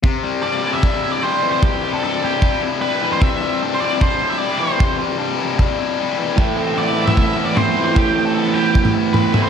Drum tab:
T2 |----------------|----------------|----------------|----------------|
BD |o-------o-------|o-------o-------|o-------o-------|o-------o-------|

T2 |-------o----o---|---------o--o-o-|
BD |o-------o-------|o-------o-------|